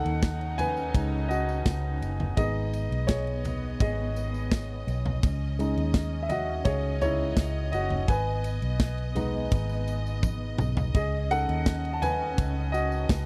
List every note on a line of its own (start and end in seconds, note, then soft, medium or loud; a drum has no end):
0.00 2.33 D#3 medium
0.00 0.93 C#4 soft
0.00 2.34 C#4 medium
0.00 0.93 D#4 medium
0.00 2.34 D#4 medium
0.00 0.55 A4 medium
0.00 0.60 F#5 loud
0.05 0.90 D#2 medium
0.05 ride soft
0.22 kick loud
0.22 snare loud
0.22 ride medium
0.22 tambourine medium
0.41 ride soft
0.58 1.27 B4 medium
0.58 1.32 G#5 loud
0.58 floor tom medium
0.58 ride medium
0.58 tambourine soft
0.77 tambourine soft
0.94 1.62 C#2 loud
0.94 1.26 G#3 medium
0.94 1.27 C#4 soft
0.94 1.27 D#4 medium
0.94 kick loud
0.94 ride medium
0.94 tambourine medium
1.28 2.33 F#4 medium
1.28 2.35 D#5 medium
1.28 ride soft
1.28 tambourine medium
1.49 tambourine soft
1.66 1.99 C#2 medium
1.66 kick loud
1.66 snare loud
1.66 ride medium
1.66 tambourine medium
2.01 2.35 F#1 medium
2.01 ride medium
2.01 tambourine soft
2.20 floor tom medium
2.37 2.87 G#1 loud
2.37 5.19 G#3 medium
2.37 5.20 B3 medium
2.37 5.19 B3 soft
2.37 5.20 D#4 medium
2.37 3.05 G#4 medium
2.37 3.04 D#5 loud
2.37 13.26 D#5 medium
2.37 kick loud
2.37 ride medium
2.37 tambourine medium
2.73 ride medium
2.73 tambourine soft
2.91 3.76 B1 medium
2.91 ride soft
3.07 3.76 G#4 medium
3.07 3.81 C#5 medium
3.07 kick loud
3.07 snare loud
3.07 ride medium
3.07 tambourine medium
3.27 ride soft
3.45 floor tom medium
3.45 ride medium
3.45 tambourine soft
3.80 4.83 G#1 loud
3.80 4.84 G#4 medium
3.80 4.83 D#5 medium
3.80 kick loud
3.80 ride medium
3.80 tambourine soft
4.16 ride soft
4.16 tambourine medium
4.34 tambourine soft
4.51 kick loud
4.51 snare loud
4.51 ride medium
4.51 tambourine medium
4.87 5.21 B1 medium
4.87 ride medium
4.87 tambourine soft
5.06 floor tom medium
5.23 5.73 C#2 loud
5.23 8.06 C#4 medium
5.23 kick loud
5.23 ride medium
5.23 tambourine medium
5.59 6.62 G#3 medium
5.59 6.62 C#4 medium
5.59 6.63 D#4 medium
5.59 ride medium
5.59 tambourine soft
5.77 6.62 D#2 medium
5.77 ride soft
5.94 kick loud
5.94 snare loud
5.94 ride medium
5.94 tambourine medium
6.23 6.30 E5 medium
6.29 6.64 F#4 medium
6.29 6.67 D#5 medium
6.29 floor tom medium
6.29 ride medium
6.29 tambourine soft
6.65 7.33 C#2 loud
6.65 7.00 G#4 medium
6.65 7.00 C#5 loud
6.65 kick loud
6.65 ride medium
6.65 tambourine soft
7.01 7.34 G#3 medium
7.01 7.35 C#4 soft
7.01 7.35 D#4 medium
7.01 7.70 E4 medium
7.01 7.75 C#5 loud
7.01 floor tom medium
7.01 ride soft
7.01 tambourine medium
7.37 7.70 C#2 medium
7.37 kick loud
7.37 snare loud
7.37 ride medium
7.37 tambourine loud
7.72 8.06 F#1 medium
7.72 7.82 F#4 medium
7.72 7.80 D#5 medium
7.72 ride medium
7.72 tambourine soft
7.90 floor tom medium
8.08 8.59 G#1 loud
8.08 10.92 B3 medium
8.08 9.48 B4 medium
8.08 9.48 G#5 loud
8.08 kick loud
8.08 ride medium
8.08 tambourine soft
8.44 ride medium
8.44 tambourine soft
8.62 9.48 B1 medium
8.62 ride soft
8.80 kick loud
8.80 snare loud
8.80 ride medium
8.80 tambourine medium
8.98 ride soft
9.15 10.90 G#3 medium
9.15 10.91 B3 medium
9.15 10.91 D#4 medium
9.15 floor tom medium
9.15 ride medium
9.15 tambourine soft
9.51 10.55 G#1 loud
9.51 kick loud
9.51 ride medium
9.51 tambourine soft
9.69 tambourine soft
9.88 ride soft
9.88 tambourine medium
10.07 tambourine soft
10.23 kick loud
10.23 high tom medium
10.23 tambourine loud
10.58 10.92 B1 medium
10.58 mid tom loud
10.58 tambourine soft
10.77 floor tom medium
10.77 tambourine soft
10.94 11.45 C#2 loud
10.94 13.26 C#4 medium
10.94 11.29 G#4 medium
10.94 11.32 D#5 medium
10.94 kick loud
10.94 ride medium
10.94 tambourine medium
11.31 12.34 C#4 soft
11.31 12.34 D#4 medium
11.31 12.34 G#4 medium
11.31 11.92 A4 medium
11.31 11.97 F#5 loud
11.31 ride medium
11.31 tambourine soft
11.48 12.34 D#2 medium
11.48 ride soft
11.66 kick loud
11.66 snare loud
11.66 ride medium
11.66 tambourine medium
11.85 ride soft
11.93 12.01 A5 medium
12.02 12.70 B4 medium
12.02 12.76 G#5 loud
12.02 floor tom medium
12.02 ride medium
12.02 tambourine medium
12.38 13.06 C#2 loud
12.38 kick loud
12.38 ride medium
12.38 tambourine soft
12.72 13.26 F#4 medium
12.72 13.26 D#5 loud
12.72 ride soft
12.72 tambourine medium
12.92 tambourine soft
13.09 13.26 C#2 medium
13.09 kick loud
13.09 snare loud
13.09 ride medium
13.09 tambourine medium